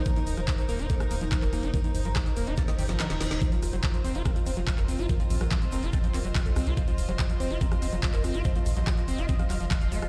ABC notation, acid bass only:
X:1
M:4/4
L:1/16
Q:1/4=143
K:none
V:1 name="Acid bass" clef=bass
_E, E, z F, E, E, _B, _E B, E, B, F, E, z B, E | _E, E, z F, E, E, _B, _E B, E, E, F, D, E, E, D, | F, F, z _G, F, F, C F C F, C G, F, z C F | F, F, z _G, F, F, C F C F, C G, F, z C F |
F, F, z _G, F, F, C F C F, C G, F, z C F | F, F, z _G, F, F, C F C F, G, F, F, F, A, z |]